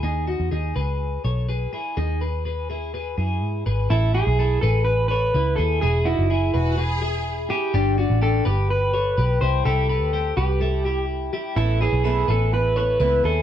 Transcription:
X:1
M:4/4
L:1/16
Q:1/4=125
K:Alyd
V:1 name="Clean electric guitar"
z16 | z16 | E2 G4 A2 B2 B4 A2 | G2 E6 z6 =G2- |
=G2 z2 A2 G2 B6 =c2 | A6 =G6 z4 | E2 G4 A2 B2 B4 A2 |]
V:2 name="Clean electric guitar"
[DG]2 [DF]2 [DG]2 [GB]4 [Ac]2 [GB]2 [EG]2 | [DG]2 [GB]2 [GB]2 [EG]2 [GB]2 [EG]4 [GB]2 | [EA]2 [EG]2 [EA]2 [GB]4 [Ac]2 [EB]2 [EG]2 | [EG]2 [DF]2 [EG]2 [GB]2 [GB]2 [EG]4 [EG]2 |
[=D=G]2 [DF]2 [DG]2 [GB]4 [Ac]2 [GB]2 [EG]2 | [E=G]2 [GB]2 [G=c]2 [GB]2 [EA]2 [EG]4 [EG]2 | [EA]2 [EG]2 [EA]2 [GB]4 [Ac]2 [EB]2 [EG]2 |]
V:3 name="Violin section"
z16 | z16 | z16 | z6 F2 G4- G z3 |
z16 | z16 | z16 |]
V:4 name="Twelve-string acoustic guitar"
z16 | z16 | z16 | z16 |
z16 | z16 | [A,,E,B,CE]2 [B,CE]2 [A,,E,B,CE]2 [B,CE]2 [E,B,CE]2 [B,CE]2 [A,,E,B,CE]2 [B,CE]2 |]
V:5 name="Picked electric bass" clef=bass
D,,3 E,, D,,2 C,,4 B,,,4 z2 | D,,8- D,,2 F,,2 G,,2 G,,,2 | A,,,3 B,,,3 A,,,6 C,,2 D,,2 | E,,,3 F,,,3 E,,,8 z2 |
=G,,,3 A,,,3 G,,,6 B,,,2 =C,,2 | =C,,3 =D,,3 C,,8 z2 | A,,,3 B,,,3 A,,,6 C,,2 D,,2 |]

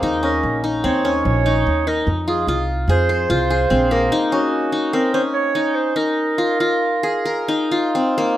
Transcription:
X:1
M:5/4
L:1/8
Q:1/4=147
K:Ebdor
V:1 name="Clarinet"
z B2 z d2 d3 B | z A2 z c2 c3 B | z G3 B c d2 c B- | B8 z2 |]
V:2 name="Qanun"
E D2 E C D2 E2 E- | E F F2 A c F A C B, | E D2 E C D2 E2 E- | E F F2 A B E F C B, |]
V:3 name="Upright bass" clef=bass
E,,2 B,,,2 E,,2 B,,,2 E,,2 | F,,2 C,,2 F,,2 C,,2 B,,,2 | z8 z2 | z8 z2 |]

